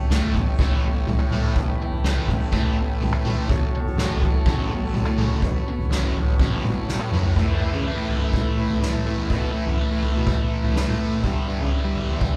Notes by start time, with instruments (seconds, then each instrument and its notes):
Already playing: tanpura A2 E3 A3, transistor combo organ E3 A3 C#4 G4 C#5
0.10 picked electric bass C#2, distorted electric guitar A2 E3 A3, snare
0.22 floor tom
0.35 picked electric bass A1, muted distorted electric guitar stroke, kick, floor tom
0.48 tanpura A3
0.59 distorted electric guitar A2 E3 A3, kick, floor tom
0.70 picked electric bass A1
0.85 muted distorted electric guitar stroke
1.07 tanpura A2, muted distorted electric guitar stroke, floor tom, mid tom
1.19 picked electric bass A2
1.32 distorted electric guitar A2 E3 A3, floor tom, mid tom
1.43 picked electric bass A2
1.56 picked electric bass A1, transistor combo organ B4, muted distorted electric guitar stroke, kick, floor tom
1.71 tanpura E3
1.81 muted distorted electric guitar stroke
1.92 floor tom
2.04 picked electric bass C#2, distorted electric guitar A2 E3 A3, snare
2.16 floor tom
2.28 picked electric bass A1, muted distorted electric guitar stroke, kick, floor tom
2.33 tanpura A3
2.52 distorted electric guitar A2 E3 A3, kick, floor tom
2.65 picked electric bass A1
2.77 muted distorted electric guitar stroke
2.94 tanpura A3
3.01 muted distorted electric guitar stroke, floor tom, mid tom
3.13 picked electric bass A2
3.25 distorted electric guitar A2 E3 A3, floor tom, mid tom
3.36 picked electric bass A2
3.49 picked electric bass A1, transistor combo organ F#3 C#4 A4 C#5, muted distorted electric guitar stroke, kick, floor tom
3.57 tanpura A2
3.74 muted distorted electric guitar stroke
3.85 floor tom
3.97 picked electric bass A1, distorted electric guitar F#2 C#3 F#3, snare
4.10 floor tom
4.18 tanpura E3, kick
4.22 picked electric bass A1, muted distorted electric guitar stroke, floor tom
4.46 distorted electric guitar F#2 C#3 F#3, kick, floor tom
4.57 picked electric bass A1
4.71 muted distorted electric guitar stroke
4.79 tanpura A3
4.93 muted distorted electric guitar stroke, floor tom, mid tom
5.05 picked electric bass A2
5.18 distorted electric guitar F#2 C#3 F#3, floor tom, mid tom
5.29 picked electric bass A2
5.39 picked electric bass A1, tanpura A3, transistor combo organ B4, kick, floor tom
5.43 muted distorted electric guitar stroke
5.68 muted distorted electric guitar stroke
5.79 floor tom
5.89 picked electric bass A1, distorted electric guitar F#2 C#3 F#3, snare
6.02 tanpura A2, floor tom
6.15 picked electric bass A1, muted distorted electric guitar stroke, floor tom
6.27 floor tom
6.39 distorted electric guitar F#2 C#3 F#3, kick, floor tom
6.51 picked electric bass A1
6.62 tanpura E3, muted distorted electric guitar stroke, mid tom
6.88 muted distorted electric guitar stroke, snare
6.99 picked electric bass A2
7.12 distorted electric guitar F#2 C#3 F#3, mid tom
7.23 picked electric bass A2, tanpura A3, floor tom
7.36 picked electric bass A2, distorted electric guitar A2 E3 A3, transistor combo organ A3 B3 E4 B4 E5, kick, floor tom, crash
7.60 picked electric bass A2
7.72 picked electric bass C#3, floor tom
7.85 distorted electric guitar A2 E3 A3
7.96 picked electric bass A2
8.09 distorted electric guitar E3 A3, floor tom
8.21 picked electric bass F#2
8.33 kick, floor tom, mid tom
8.57 picked electric bass A2
8.70 floor tom
8.82 distorted electric guitar A2 E3 A3, snare
8.94 mid tom
9.05 picked electric bass A2, distorted electric guitar E3 A3
9.17 picked electric bass E2
9.30 distorted electric guitar A2 E3 A3, picked electric bass B2, kick, floor tom
9.54 picked electric bass A2
9.66 picked electric bass F#2, floor tom
9.79 distorted electric guitar A2 E3 A3
9.91 picked electric bass A2
10.02 distorted electric guitar E3 A3, floor tom
10.16 picked electric bass B2
10.27 kick, floor tom, mid tom
10.64 picked electric bass A2, floor tom
10.75 distorted electric guitar A2 E3 A3, snare
10.87 picked electric bass A2, mid tom
10.99 distorted electric guitar E3 A3
11.23 distorted electric guitar G2 D3 G3, picked electric bass G2, transistor combo organ G3 D4, kick, floor tom
11.48 picked electric bass G2
11.60 picked electric bass C#3, floor tom
11.72 distorted electric guitar G2 D3 G3
11.85 picked electric bass G3
11.97 distorted electric guitar D3 G3, floor tom
12.09 picked electric bass E2
12.21 kick, floor tom, mid tom